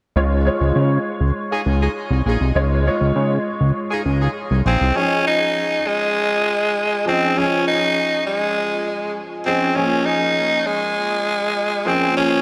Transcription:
0.16 0.50 C#2 medium
0.16 0.35 G#3 medium
0.16 0.35 D#4 medium
0.16 0.36 F4 medium
0.16 0.36 C#5 medium
0.45 1.23 G#3 medium
0.45 1.23 D#4 medium
0.45 1.24 F4 medium
0.45 1.24 C#5 medium
0.61 0.72 C#2 medium
0.76 0.98 C#3 loud
1.21 1.32 C#2 medium
1.51 1.61 D#4 medium
1.51 1.61 F4 medium
1.51 1.61 G#4 loud
1.66 1.89 C#2 medium
1.81 1.91 D#4 medium
1.81 1.91 F4 medium
1.81 1.91 G#4 medium
2.11 2.22 C2 medium
2.26 2.37 A#1 medium
2.26 2.45 D#4 medium
2.26 2.45 F4 medium
2.26 2.45 G#4 medium
2.41 2.52 C2 medium
2.55 2.90 C#2 loud
2.55 2.75 G#3 medium
2.55 2.75 D#4 medium
2.55 2.75 F4 medium
2.55 2.76 C#5 medium
2.86 3.64 G#3 medium
2.86 3.64 D#4 medium
2.86 3.64 F4 medium
2.86 3.64 C#5 medium
3.01 3.12 C#2 medium
3.16 3.38 C#3 medium
3.61 3.72 C#2 medium
3.91 4.01 D#4 medium
3.91 4.01 F4 medium
3.91 4.01 G#4 medium
4.06 4.28 C#2 medium
4.21 4.31 D#4 medium
4.21 4.31 F4 medium
4.21 4.31 G#4 medium
4.51 4.62 C2 medium
4.66 4.77 A#1 medium
4.66 4.98 C4 medium
4.66 4.85 D#4 medium
4.66 4.85 F4 medium
4.66 4.85 G#4 medium
4.81 4.92 C2 medium
4.95 5.73 F3 medium
4.95 5.73 C#4 medium
4.95 5.26 C#4 loud
4.95 5.74 D#4 medium
4.95 5.74 G#4 medium
5.27 5.89 D#4 loud
5.87 7.07 G#3 medium
7.05 7.25 F3 medium
7.05 7.39 C4 medium
7.05 7.25 C#4 medium
7.05 7.26 D#4 medium
7.05 7.26 G#4 medium
7.36 8.14 F3 medium
7.36 8.14 C#4 medium
7.36 7.67 C#4 loud
7.36 8.14 D#4 medium
7.36 8.14 G#4 medium
7.67 8.23 D#4 loud
8.27 9.15 G#3 medium
9.46 9.65 F3 medium
9.46 9.77 C4 medium
9.46 9.66 C#4 medium
9.46 9.66 D#4 medium
9.46 9.66 G#4 medium
9.76 10.54 F3 medium
9.76 10.54 A#3 medium
9.76 10.07 C#4 loud
9.76 10.54 C#4 medium
9.76 10.54 G#4 medium
10.06 10.68 D#4 loud
10.66 11.89 G#3 medium
11.85 12.05 F3 medium
11.85 12.05 A#3 medium
11.85 12.16 C4 medium
11.85 12.05 C#4 medium
11.85 12.06 G#4 medium
12.16 12.42 F3 medium
12.16 12.42 A#3 medium
12.16 12.42 C#4 loud
12.16 12.42 C#4 medium
12.16 12.42 G#4 medium

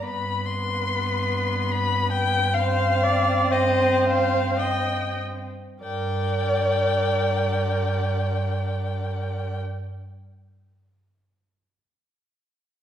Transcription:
0.04 5.46 G2 medium
0.04 2.52 B3 medium
0.04 2.52 B4 medium
0.04 0.48 B5 loud
0.46 1.73 C6 loud
1.71 2.12 B5 loud
2.12 2.56 G5 loud
2.54 5.46 C4 loud
2.54 3.05 C5 loud
2.54 3.53 F5 loud
3.03 3.53 D5 loud
3.51 4.59 C5 loud
3.51 4.07 D#5 loud
4.05 4.61 F5 loud
4.59 5.20 D#5 medium
4.59 5.21 G5 loud
5.81 9.56 G2 medium
5.81 9.56 A#4 medium
5.81 9.54 D5 medium
5.81 9.57 G5 loud

